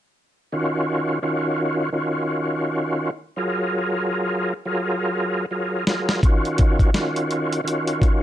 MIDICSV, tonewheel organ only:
0, 0, Header, 1, 2, 480
1, 0, Start_track
1, 0, Key_signature, -6, "minor"
1, 0, Tempo, 714286
1, 345, Time_signature, 4, 2, 24, 8
1, 5530, End_track
2, 0, Start_track
2, 0, Title_t, "Tonewheel organ"
2, 0, Program_c, 0, 16
2, 351, Note_on_c, 0, 51, 95
2, 355, Note_on_c, 0, 61, 80
2, 358, Note_on_c, 0, 65, 82
2, 361, Note_on_c, 0, 66, 104
2, 798, Note_off_c, 0, 51, 0
2, 799, Note_off_c, 0, 61, 0
2, 801, Note_off_c, 0, 65, 0
2, 802, Note_off_c, 0, 66, 0
2, 823, Note_on_c, 0, 51, 89
2, 825, Note_on_c, 0, 61, 85
2, 828, Note_on_c, 0, 65, 80
2, 832, Note_on_c, 0, 66, 108
2, 1273, Note_off_c, 0, 51, 0
2, 1275, Note_off_c, 0, 61, 0
2, 1276, Note_off_c, 0, 65, 0
2, 1278, Note_off_c, 0, 66, 0
2, 1294, Note_on_c, 0, 51, 88
2, 1297, Note_on_c, 0, 61, 80
2, 1302, Note_on_c, 0, 65, 81
2, 1305, Note_on_c, 0, 66, 92
2, 2083, Note_off_c, 0, 51, 0
2, 2085, Note_off_c, 0, 61, 0
2, 2087, Note_off_c, 0, 65, 0
2, 2089, Note_off_c, 0, 66, 0
2, 2261, Note_on_c, 0, 54, 89
2, 2264, Note_on_c, 0, 65, 78
2, 2268, Note_on_c, 0, 68, 86
2, 2271, Note_on_c, 0, 70, 98
2, 3047, Note_off_c, 0, 54, 0
2, 3048, Note_off_c, 0, 65, 0
2, 3050, Note_off_c, 0, 68, 0
2, 3052, Note_off_c, 0, 70, 0
2, 3128, Note_on_c, 0, 54, 85
2, 3131, Note_on_c, 0, 65, 85
2, 3134, Note_on_c, 0, 68, 76
2, 3137, Note_on_c, 0, 70, 98
2, 3666, Note_off_c, 0, 54, 0
2, 3667, Note_off_c, 0, 65, 0
2, 3669, Note_off_c, 0, 68, 0
2, 3671, Note_off_c, 0, 70, 0
2, 3702, Note_on_c, 0, 54, 76
2, 3704, Note_on_c, 0, 65, 65
2, 3708, Note_on_c, 0, 68, 71
2, 3710, Note_on_c, 0, 70, 74
2, 3928, Note_off_c, 0, 54, 0
2, 3929, Note_off_c, 0, 65, 0
2, 3931, Note_off_c, 0, 68, 0
2, 3932, Note_off_c, 0, 70, 0
2, 3953, Note_on_c, 0, 54, 73
2, 3956, Note_on_c, 0, 65, 73
2, 3959, Note_on_c, 0, 68, 72
2, 3961, Note_on_c, 0, 70, 84
2, 4173, Note_off_c, 0, 54, 0
2, 4175, Note_off_c, 0, 65, 0
2, 4176, Note_off_c, 0, 68, 0
2, 4178, Note_off_c, 0, 70, 0
2, 4195, Note_on_c, 0, 51, 94
2, 4197, Note_on_c, 0, 61, 79
2, 4200, Note_on_c, 0, 65, 83
2, 4203, Note_on_c, 0, 66, 104
2, 4639, Note_off_c, 0, 51, 0
2, 4641, Note_off_c, 0, 61, 0
2, 4642, Note_off_c, 0, 65, 0
2, 4644, Note_off_c, 0, 66, 0
2, 4663, Note_on_c, 0, 51, 85
2, 4666, Note_on_c, 0, 61, 88
2, 4669, Note_on_c, 0, 65, 83
2, 4672, Note_on_c, 0, 66, 105
2, 5113, Note_off_c, 0, 51, 0
2, 5115, Note_off_c, 0, 61, 0
2, 5117, Note_off_c, 0, 65, 0
2, 5118, Note_off_c, 0, 66, 0
2, 5133, Note_on_c, 0, 51, 88
2, 5137, Note_on_c, 0, 61, 80
2, 5140, Note_on_c, 0, 65, 83
2, 5143, Note_on_c, 0, 66, 94
2, 5530, Note_off_c, 0, 51, 0
2, 5530, Note_off_c, 0, 61, 0
2, 5530, Note_off_c, 0, 65, 0
2, 5530, Note_off_c, 0, 66, 0
2, 5530, End_track
0, 0, End_of_file